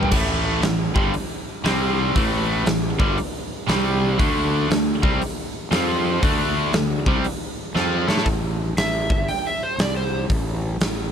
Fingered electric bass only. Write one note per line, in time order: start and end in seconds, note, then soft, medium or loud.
0.00 0.11 G2 medium
0.12 0.60 A1 loud
0.64 0.94 A1 medium
0.96 1.13 G1 medium
1.64 2.12 C2 medium
2.16 2.63 A1 medium
2.66 2.97 A1 medium
3.00 3.16 G1 medium
3.69 4.16 C2 medium
4.20 4.67 D2 loud
4.70 5.01 D2 medium
5.03 5.20 C2 medium
5.71 6.19 F2 medium
6.23 6.70 D2 medium
6.74 7.04 D2 medium
7.06 7.23 C2 medium
7.75 8.06 F2 medium
8.08 8.25 A2 medium
8.26 8.73 A1 medium
8.77 9.07 A1 medium
9.10 9.27 G1 medium
9.78 10.26 C2 medium
10.30 10.77 A1 medium
10.81 11.11 A1 medium